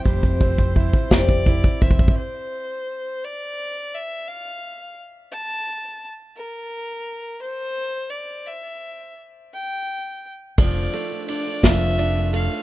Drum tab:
RD |------------------------|------------------------|------------------------|------------------------|
SD |------------o-----------|------------------------|------------------------|------------------------|
BD |o-o-o-o-o-o-o-o-o-o-oooo|------------------------|------------------------|------------------------|

RD |------------------------|x---x---x---x---x---x---|
SD |------------------------|------------o-----------|
BD |------------------------|o-----------o-----------|